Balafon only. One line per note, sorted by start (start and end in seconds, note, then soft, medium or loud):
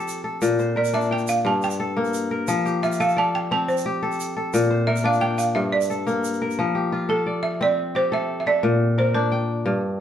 0.77 0.93 D5 medium
0.94 1.11 E5 medium
1.13 1.29 G5 loud
1.29 1.46 F5 medium
1.47 1.63 A5 medium
1.64 2.45 G5 medium
2.83 3.00 E5 loud
3.00 3.08 F5 loud
3.18 3.35 A5 loud
3.35 3.52 G5 medium
3.52 3.67 A5 medium
3.68 4.50 C5 medium
4.87 4.95 E5 medium
5.06 5.23 F5 loud
5.21 5.39 G5 loud
5.38 5.56 F5 medium
5.55 5.73 E5 medium
5.72 6.54 D5 medium
7.10 7.45 A4 medium
7.43 7.61 E5 medium
7.63 7.94 D5 medium
7.96 8.04 C5 loud
8.14 8.39 E5 medium
8.40 8.47 E5 medium
8.47 8.78 D5 medium
8.99 9.16 C5 medium
9.15 9.62 A#4 medium